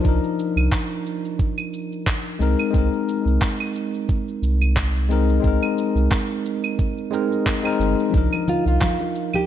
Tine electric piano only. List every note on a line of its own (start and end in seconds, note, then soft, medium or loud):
0.00 2.43 F3 medium
0.00 0.04 D4 medium
0.00 2.37 D4 medium
0.00 0.06 D#4 medium
0.00 0.08 A#4 medium
0.06 2.38 D#4 medium
0.06 2.39 A#4 medium
2.39 2.61 G#3 medium
2.39 2.61 C4 medium
2.39 2.62 D#4 medium
2.39 2.62 A#4 loud
2.71 5.05 G#3 medium
2.71 5.06 C4 medium
2.75 5.07 D#4 medium
2.75 5.09 A#4 medium
5.09 5.30 G#3 medium
5.09 5.31 C4 medium
5.09 5.32 D#4 medium
5.09 5.32 A#4 medium
5.40 7.07 G#3 medium
5.40 7.09 C4 medium
5.45 7.10 D#4 medium
5.45 7.11 A#4 medium
7.11 7.32 G#3 loud
7.11 7.33 C4 medium
7.11 7.34 D#4 medium
7.11 7.34 A#4 loud
7.63 8.09 G#3 medium
7.63 8.10 C4 medium
7.63 8.10 D#4 medium
7.63 8.11 A#4 loud
8.10 9.46 F3 medium
8.10 9.46 D4 medium
8.15 9.46 D#4 medium
8.15 9.46 A#4 medium